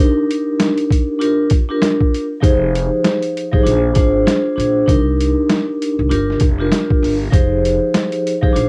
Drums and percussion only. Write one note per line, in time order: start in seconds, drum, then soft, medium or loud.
0.31 closed hi-hat medium
0.60 snare loud
0.60 snare medium
0.60 closed hi-hat medium
0.78 closed hi-hat medium
0.91 kick medium
0.91 closed hi-hat medium
1.22 closed hi-hat medium
1.50 kick loud
1.50 closed hi-hat medium
1.82 snare loud
1.82 snare medium
1.82 closed hi-hat medium
2.01 kick medium
2.15 closed hi-hat medium
2.43 kick loud
2.43 closed hi-hat medium
2.75 closed hi-hat medium
3.04 snare loud
3.04 snare medium
3.04 closed hi-hat medium
3.22 closed hi-hat medium
3.37 closed hi-hat medium
3.53 kick medium
3.66 closed hi-hat medium
3.95 kick loud
3.95 closed hi-hat medium
4.27 snare loud
4.27 snare medium
4.27 closed hi-hat loud
4.60 closed hi-hat medium
4.88 kick loud
4.88 closed hi-hat medium
5.20 closed hi-hat medium
5.49 snare loud
5.49 snare medium
5.49 closed hi-hat medium
5.82 closed hi-hat medium
6.11 closed hi-hat medium
6.30 snare soft
6.40 kick loud
6.40 closed hi-hat medium
6.72 snare loud
6.72 snare medium
6.72 closed hi-hat loud
6.91 kick medium
7.04 open hi-hat medium
7.33 kick loud
7.33 closed hi-hat medium
7.65 closed hi-hat medium
7.94 snare loud
7.94 snare medium
7.94 closed hi-hat medium
8.12 closed hi-hat medium
8.27 closed hi-hat medium
8.43 kick medium
8.56 closed hi-hat medium